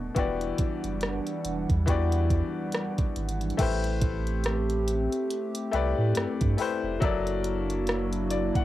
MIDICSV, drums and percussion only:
0, 0, Header, 1, 2, 480
1, 0, Start_track
1, 0, Tempo, 857143
1, 90, Time_signature, 4, 2, 24, 8
1, 4842, End_track
2, 0, Start_track
2, 0, Title_t, "Drums"
2, 90, Note_on_c, 9, 36, 97
2, 90, Note_on_c, 9, 42, 68
2, 146, Note_off_c, 9, 36, 0
2, 146, Note_off_c, 9, 42, 0
2, 230, Note_on_c, 9, 42, 49
2, 286, Note_off_c, 9, 42, 0
2, 326, Note_on_c, 9, 42, 74
2, 329, Note_on_c, 9, 36, 89
2, 382, Note_off_c, 9, 42, 0
2, 385, Note_off_c, 9, 36, 0
2, 470, Note_on_c, 9, 42, 45
2, 526, Note_off_c, 9, 42, 0
2, 565, Note_on_c, 9, 42, 61
2, 576, Note_on_c, 9, 37, 100
2, 621, Note_off_c, 9, 42, 0
2, 632, Note_off_c, 9, 37, 0
2, 709, Note_on_c, 9, 42, 51
2, 765, Note_off_c, 9, 42, 0
2, 810, Note_on_c, 9, 42, 76
2, 866, Note_off_c, 9, 42, 0
2, 950, Note_on_c, 9, 36, 85
2, 950, Note_on_c, 9, 42, 46
2, 1006, Note_off_c, 9, 36, 0
2, 1006, Note_off_c, 9, 42, 0
2, 1050, Note_on_c, 9, 36, 88
2, 1052, Note_on_c, 9, 42, 80
2, 1106, Note_off_c, 9, 36, 0
2, 1108, Note_off_c, 9, 42, 0
2, 1188, Note_on_c, 9, 42, 67
2, 1244, Note_off_c, 9, 42, 0
2, 1290, Note_on_c, 9, 36, 82
2, 1291, Note_on_c, 9, 42, 45
2, 1346, Note_off_c, 9, 36, 0
2, 1347, Note_off_c, 9, 42, 0
2, 1525, Note_on_c, 9, 42, 66
2, 1537, Note_on_c, 9, 37, 110
2, 1581, Note_off_c, 9, 42, 0
2, 1593, Note_off_c, 9, 37, 0
2, 1670, Note_on_c, 9, 42, 47
2, 1672, Note_on_c, 9, 36, 94
2, 1726, Note_off_c, 9, 42, 0
2, 1728, Note_off_c, 9, 36, 0
2, 1770, Note_on_c, 9, 42, 66
2, 1826, Note_off_c, 9, 42, 0
2, 1841, Note_on_c, 9, 42, 58
2, 1897, Note_off_c, 9, 42, 0
2, 1910, Note_on_c, 9, 42, 46
2, 1961, Note_off_c, 9, 42, 0
2, 1961, Note_on_c, 9, 42, 38
2, 2009, Note_off_c, 9, 42, 0
2, 2009, Note_on_c, 9, 42, 75
2, 2009, Note_on_c, 9, 49, 97
2, 2010, Note_on_c, 9, 36, 100
2, 2065, Note_off_c, 9, 42, 0
2, 2065, Note_off_c, 9, 49, 0
2, 2066, Note_off_c, 9, 36, 0
2, 2150, Note_on_c, 9, 42, 53
2, 2206, Note_off_c, 9, 42, 0
2, 2248, Note_on_c, 9, 42, 76
2, 2250, Note_on_c, 9, 36, 99
2, 2304, Note_off_c, 9, 42, 0
2, 2306, Note_off_c, 9, 36, 0
2, 2391, Note_on_c, 9, 42, 47
2, 2447, Note_off_c, 9, 42, 0
2, 2485, Note_on_c, 9, 42, 62
2, 2497, Note_on_c, 9, 37, 107
2, 2541, Note_off_c, 9, 42, 0
2, 2553, Note_off_c, 9, 37, 0
2, 2631, Note_on_c, 9, 42, 52
2, 2687, Note_off_c, 9, 42, 0
2, 2731, Note_on_c, 9, 42, 82
2, 2787, Note_off_c, 9, 42, 0
2, 2870, Note_on_c, 9, 42, 49
2, 2926, Note_off_c, 9, 42, 0
2, 2971, Note_on_c, 9, 42, 90
2, 3027, Note_off_c, 9, 42, 0
2, 3107, Note_on_c, 9, 42, 74
2, 3163, Note_off_c, 9, 42, 0
2, 3210, Note_on_c, 9, 42, 50
2, 3266, Note_off_c, 9, 42, 0
2, 3444, Note_on_c, 9, 42, 75
2, 3457, Note_on_c, 9, 37, 117
2, 3500, Note_off_c, 9, 42, 0
2, 3513, Note_off_c, 9, 37, 0
2, 3589, Note_on_c, 9, 42, 51
2, 3592, Note_on_c, 9, 36, 108
2, 3645, Note_off_c, 9, 42, 0
2, 3648, Note_off_c, 9, 36, 0
2, 3686, Note_on_c, 9, 46, 75
2, 3742, Note_off_c, 9, 46, 0
2, 3930, Note_on_c, 9, 36, 108
2, 3931, Note_on_c, 9, 42, 67
2, 3986, Note_off_c, 9, 36, 0
2, 3987, Note_off_c, 9, 42, 0
2, 4070, Note_on_c, 9, 42, 50
2, 4126, Note_off_c, 9, 42, 0
2, 4168, Note_on_c, 9, 42, 76
2, 4224, Note_off_c, 9, 42, 0
2, 4312, Note_on_c, 9, 42, 50
2, 4368, Note_off_c, 9, 42, 0
2, 4407, Note_on_c, 9, 42, 63
2, 4418, Note_on_c, 9, 37, 110
2, 4463, Note_off_c, 9, 42, 0
2, 4474, Note_off_c, 9, 37, 0
2, 4550, Note_on_c, 9, 42, 52
2, 4606, Note_off_c, 9, 42, 0
2, 4650, Note_on_c, 9, 42, 80
2, 4706, Note_off_c, 9, 42, 0
2, 4790, Note_on_c, 9, 36, 91
2, 4791, Note_on_c, 9, 42, 47
2, 4842, Note_off_c, 9, 36, 0
2, 4842, Note_off_c, 9, 42, 0
2, 4842, End_track
0, 0, End_of_file